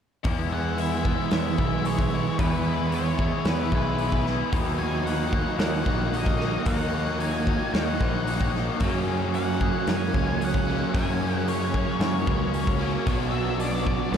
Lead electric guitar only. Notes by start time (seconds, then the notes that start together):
0.53 F#5
0.80 E5
1.33 E5
1.86 C#5
2.39 B4
2.95 C#5
3.48 B4
4.79 G#5
5.06 F#5
5.61 F#5
6.16 D#5
6.67 F#5
7.20 G#5
7.74 F#5
9.35 F#5
9.90 G#5
10.45 F#5
10.95 G#5
11.38 F#5
11.48 C#5
13.31 E5
13.60 D5
14.13 D5